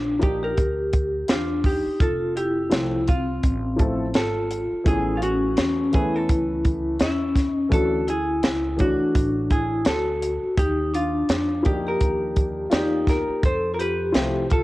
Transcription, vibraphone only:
0.00 0.18 D4 medium
0.22 0.41 D#4 medium
0.43 1.25 G4 medium
1.30 1.63 D4 medium
1.65 1.98 D#4 medium
2.00 2.33 F4 medium
2.37 3.04 E4 medium
3.08 4.11 C4 medium
4.15 4.82 F4 medium
4.86 5.14 E4 medium
5.16 5.21 C#4 medium
5.23 5.90 C#4 medium
5.93 6.13 E4 medium
6.14 7.00 E4 medium
7.01 7.68 C#4 medium
7.72 8.05 F#4 medium
8.08 8.75 E4 medium
8.79 9.46 D4 medium
9.51 9.84 E4 medium
9.87 10.54 F#4 medium
10.58 10.91 D#4 medium
10.94 11.61 D4 medium
11.66 11.85 D#4 medium
11.87 12.68 G4 medium
12.73 13.05 D#4 medium
13.08 13.41 G4 medium
13.44 13.71 A4 medium
13.74 13.79 F4 medium
13.79 14.46 G4 medium
14.50 14.63 F4 medium

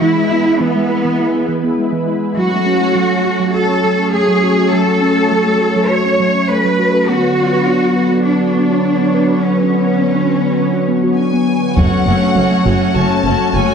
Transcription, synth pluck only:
0.01 0.10 E3 medium
0.17 0.25 E4 medium
0.32 0.40 B3 medium
0.46 0.55 E4 medium
0.60 0.69 E3 medium
0.76 0.84 G#3 medium
0.90 0.99 E4 medium
1.05 1.13 E3 medium
1.20 1.28 E4 soft
1.34 1.43 B3 medium
1.48 1.57 E3 medium
1.64 1.72 B3 medium
1.78 1.87 G#3 medium
1.92 2.01 E3 medium
2.08 2.16 E4 soft
2.23 2.31 E4 medium
2.37 2.46 F#3 medium
2.52 2.61 F#4 medium
2.66 2.75 C#4 soft
2.95 3.04 F#3 medium
3.10 3.19 A3 medium
3.25 3.34 F#4 soft
3.40 3.49 F#3 medium
3.54 3.63 F#4 medium
3.70 3.78 C#4 medium
3.84 3.93 F#3 medium
3.99 4.08 C#4 medium
4.13 4.22 A3 medium
4.28 4.37 F#3 medium
4.43 4.52 F#4 soft
4.58 4.67 F#4 soft
4.73 4.81 F#3 medium
4.88 4.96 F#4 medium
5.02 5.11 C#4 soft
5.17 5.25 F#4 medium
5.32 5.40 F#3 medium
5.46 5.55 A3 medium
5.61 5.70 F#4 soft
5.76 5.84 F#3 medium
5.91 5.99 F#4 soft
6.06 6.14 C#4 medium
6.20 6.28 F#3 medium
6.35 6.43 C#4 soft
6.49 6.58 A3 medium
6.65 6.73 F#3 medium
6.79 6.88 F#4 soft
6.94 7.02 F#4 medium
7.09 7.17 B3 medium
7.23 7.31 B4 medium
7.37 7.46 F#4 soft
7.53 7.61 B4 medium
7.67 7.76 B3 medium
7.82 7.90 D4 medium
7.96 8.05 B4 soft
8.11 8.20 B3 medium
8.26 8.35 B4 soft
8.40 8.49 F#4 medium
8.55 8.64 B3 medium
8.70 8.79 F#4 soft
8.85 8.93 D4 medium
8.99 9.08 B3 medium
9.14 9.23 B4 soft
9.29 9.38 B4 soft
9.43 9.52 B3 medium
9.58 9.66 B4 medium
9.72 9.81 F#4 soft
9.87 9.96 B4 soft
10.01 10.10 B3 medium
10.15 10.25 D4 soft
10.30 10.39 B4 soft
10.45 10.54 B3 medium
10.59 10.68 B4 soft
10.73 10.83 F#4 soft
10.88 10.97 B3 medium
11.04 11.13 F#4 soft
11.18 11.27 D4 soft
11.33 11.42 B3 medium
11.48 11.57 B4 soft
11.63 11.72 B4 soft
11.78 11.87 F#3 medium
11.92 12.01 F#4 medium
12.07 12.16 C#4 soft
12.36 12.45 F#3 medium
12.51 12.60 A3 medium
12.66 12.75 F#4 medium
12.81 12.90 F#3 medium
12.96 13.04 F#4 medium
13.10 13.19 C#4 medium
13.25 13.34 F#3 medium
13.40 13.49 C#4 medium
13.54 13.63 A3 medium
13.69 13.74 F#3 medium

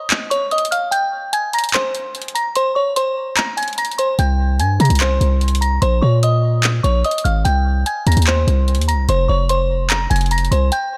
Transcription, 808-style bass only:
4.19 4.61 C2 loud
4.59 4.79 G2 loud
4.80 4.89 C3 loud
4.90 5.20 C2 loud
5.21 5.80 C2 loud
5.82 6.02 A#1 loud
6.02 6.81 A#2 loud
6.84 7.04 A#1 loud
7.25 7.44 G#1 loud
7.45 7.84 C2 loud
8.07 8.16 D#2 loud
8.17 8.46 D#2 loud
8.47 8.80 C2 loud
8.78 8.95 D#2 medium
8.93 9.08 C2 loud
9.09 9.28 F1 loud
9.29 10.07 F1 loud
10.11 10.50 F1 loud
10.51 10.71 C2 loud

